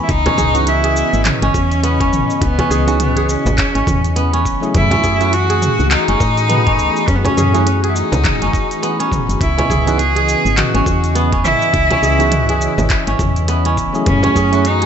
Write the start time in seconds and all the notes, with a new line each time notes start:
Already playing: B3 C#4
0.03 E4
0.08 C#2 C#3 E3 B3 D#4 D#5, kick, closed hi-hat, cabasa
0.26 C#4, closed hi-hat, frame drum
0.38 C#2 G#4, kick, mid tom, cabasa
0.54 E3 B3 C#4 D#4 F#4 G#4, closed hi-hat, cabasa
0.67 E4, closed hi-hat, cabasa
0.84 G#4, closed hi-hat
0.96 cabasa
1.13 G#1, cabasa
1.25 C#4, clap, closed hi-hat, mid tom, cabasa
1.42 G#1 C#4, closed hi-hat
1.54 E2, kick, cabasa
1.72 closed hi-hat, cabasa
1.83 B3, closed hi-hat, cabasa
2.00 C#4, kick, closed hi-hat
2.12 G#1, mid tom, cabasa
2.30 cabasa
2.41 C#2 B3 C#4, kick, closed hi-hat, cabasa
2.59 C#4, closed hi-hat, frame drum
2.70 C#2 G#4, cabasa
2.87 E3 B3 C#4 D#4 F#4 G#4, closed hi-hat, cabasa
3.00 B3, closed hi-hat, mid tom, cabasa
3.17 G#4, closed hi-hat
3.29 C#4, cabasa
3.46 G#1, frame drum, cabasa
3.58 kick, clap, closed hi-hat, cabasa
3.75 G#1 C#4, closed hi-hat
3.87 E2, kick, mid tom, cabasa
4.04 closed hi-hat, cabasa
4.16 B3, closed hi-hat, cabasa
4.33 C#4, closed hi-hat
4.45 G#1, kick, cabasa
4.61 F#3 A3 C#4 E4 G#4, cabasa
4.74 F#2 E3 A3 E4 F#4 G#4, kick, closed hi-hat, mid tom, cabasa
4.91 C#4, closed hi-hat, frame drum
5.03 F#2 G#4, kick, cabasa
5.19 F#3 A3 C#4 E4 F#4 G#4, closed hi-hat, cabasa
5.33 F#4, closed hi-hat, cabasa
5.50 G#4, closed hi-hat
5.62 mid tom, cabasa
5.80 C#2, cabasa
5.91 D#4, clap, closed hi-hat, cabasa
6.08 F#1 C#4, closed hi-hat
6.20 A2, kick, cabasa
6.37 closed hi-hat, cabasa
6.49 B3, closed hi-hat, mid tom, cabasa
6.67 C#4, kick, closed hi-hat
6.79 C#2, cabasa
6.96 cabasa
7.08 F#2 C#4 F#4, kick, closed hi-hat, cabasa
7.16 B3
7.25 C#4, closed hi-hat, frame drum
7.37 F#2 G#4, mid tom, cabasa
7.53 F#3 A3 C#4 E4 F#4 G#4, closed hi-hat, cabasa
7.66 C#4, closed hi-hat, cabasa
7.84 G#4, closed hi-hat
7.89 E4
7.95 D#4, cabasa
8.12 C#2, closed hi-hat, frame drum, cabasa
8.24 kick, clap, closed hi-hat, mid tom, cabasa
8.42 F#1 C#4, closed hi-hat
8.53 kick, cabasa
8.71 closed hi-hat, cabasa
8.83 B3, closed hi-hat, cabasa
9.00 C#4, closed hi-hat
9.12 kick, mid tom, cabasa
9.29 F#1, closed hi-hat, cabasa
9.41 C#2 C#3 B3 E4 D#5, kick, closed hi-hat, cabasa
9.58 C#4, closed hi-hat, frame drum
9.70 C#2 G#4, kick, mid tom, cabasa
9.86 E3 B3 C#4 D#4 F#4 G#4, closed hi-hat, cabasa
9.98 G#4, closed hi-hat, cabasa
10.16 G#4, closed hi-hat
10.29 cabasa
10.45 G#1, cabasa
10.57 F#4, clap, closed hi-hat, mid tom, cabasa
10.74 G#1 C#4, closed hi-hat
10.86 E2, kick, cabasa
11.04 closed hi-hat, cabasa
11.15 B3, closed hi-hat, cabasa
11.32 C#4, kick, closed hi-hat
11.44 G#1 E4, mid tom, cabasa
11.62 cabasa
11.74 C#2 C#4, kick, closed hi-hat, cabasa
11.90 C#4, closed hi-hat, frame drum
12.03 C#2 G#4, cabasa
12.18 E3 B3 C#4 D#4 F#4 G#4, closed hi-hat, cabasa
12.32 closed hi-hat, mid tom, cabasa
12.49 G#4, closed hi-hat
12.61 cabasa
12.78 G#1, frame drum, cabasa
12.90 kick, clap, closed hi-hat, cabasa
13.07 G#1 C#4, closed hi-hat
13.19 E2, kick, mid tom, cabasa
13.36 closed hi-hat, cabasa
13.48 B3, closed hi-hat, cabasa
13.65 C#4, closed hi-hat
13.77 G#1, kick, cabasa
13.93 F#3 A3 C#4 E4 G#4, cabasa
14.06 F#2 A3 C#4 F#4 G#4, kick, closed hi-hat, mid tom, cabasa
14.23 C#4, closed hi-hat, frame drum
14.36 F#2 G#4, kick, cabasa
14.51 F#3 A3 C#4 E4 F#4 G#4, closed hi-hat, cabasa
14.65 D#4, closed hi-hat, cabasa
14.82 G#4, closed hi-hat